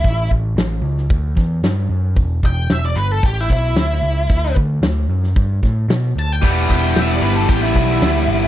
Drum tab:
HH |o---o---o---o---|o---o---o---o---|o---o---o---o---|o---o---o---o---|
SD |----o--o--o-o---|----o-------o---|----o--o--o-o---|----o-------o---|
BD |o-o-----o-o-----|o-o-----o-o-----|o-o-----o-o-----|o-o-----o-o-----|